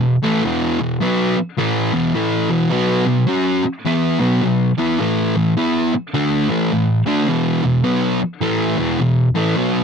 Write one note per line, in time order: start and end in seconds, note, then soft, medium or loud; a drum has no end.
0.00 0.15 E2 medium
0.00 0.15 B2 medium
0.23 0.43 A2 medium
0.23 0.43 E3 medium
0.23 0.44 A3 loud
0.43 0.78 E2 medium
0.43 0.78 B2 loud
0.43 0.79 E3 medium
0.80 0.97 E2 medium
0.80 0.97 B2 medium
1.01 1.35 B2 medium
1.01 1.36 F#3 medium
1.01 1.36 B3 loud
1.36 muted distorted electric guitar stroke soft
1.57 1.92 A2 medium
1.57 1.92 E3 medium
1.57 1.92 A3 medium
1.93 2.14 E2 medium
1.93 2.14 B2 medium
1.93 2.14 E3 medium
2.15 2.49 A2 medium
2.15 2.49 E3 medium
2.15 2.50 A3 medium
2.50 2.71 E2 medium
2.50 2.70 B2 medium
2.50 2.72 E3 loud
2.71 3.05 B2 medium
2.71 3.06 F#3 medium
2.71 3.06 B3 medium
3.07 3.24 B2 medium
3.07 3.24 F#3 medium
3.27 3.62 F#3 medium
3.27 3.63 C#4 medium
3.27 3.63 F#4 medium
3.64 muted distorted electric guitar stroke medium
3.85 4.19 E3 medium
3.85 4.20 B3 medium
3.85 4.20 E4 loud
4.20 4.41 B2 medium
4.20 4.41 F#3 medium
4.20 4.42 B3 medium
4.42 4.71 B2 medium
4.42 4.71 F#3 medium
4.78 4.99 E3 medium
4.78 5.00 B3 medium
4.78 5.00 E4 medium
5.00 5.34 A2 medium
5.00 5.34 E3 medium
5.00 5.35 A3 loud
5.36 5.53 A2 medium
5.36 5.53 E3 medium
5.57 5.92 E3 medium
5.57 5.92 B3 loud
5.57 5.92 E4 medium
5.94 muted distorted electric guitar stroke medium
6.14 6.49 D3 medium
6.14 6.49 A3 medium
6.14 6.49 D4 loud
6.49 6.71 A2 medium
6.49 6.71 E3 medium
6.49 6.71 A3 medium
6.72 7.00 A2 medium
6.72 7.00 E3 medium
7.06 7.27 D3 medium
7.06 7.28 A3 medium
7.06 7.28 D4 loud
7.28 7.62 E2 medium
7.28 7.62 B2 loud
7.28 7.63 E3 loud
7.63 7.81 E2 medium
7.63 7.81 B2 medium
7.83 8.19 B2 medium
7.83 8.19 F#3 medium
7.83 8.19 B3 loud
8.21 muted distorted electric guitar stroke medium
8.41 8.76 A2 medium
8.41 8.77 E3 loud
8.41 8.77 A3 medium
8.78 8.98 E2 loud
8.78 8.98 B2 medium
8.78 9.00 E3 loud
8.99 9.28 E2 medium
8.99 9.28 B2 medium
9.35 9.56 A2 medium
9.35 9.56 E3 medium
9.35 9.57 A3 loud
9.56 9.84 B2 loud
9.56 9.84 F#3 medium
9.56 9.84 B3 loud